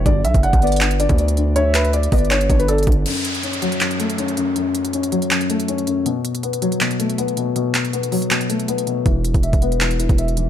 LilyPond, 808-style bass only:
\new Staff \with { instrumentName = "808-style bass" } { \clef bass \time 4/4 \key fis \phrygian \tempo 4 = 160 g,,8 b,,16 fis,,8 g,,4. d,4~ d,16~ | d,4. g,,4 g,,4 g,,8 | r1 | r1 |
r1 | r1 | e,,8. e,,8 e,,4. e,,4~ e,,16 | }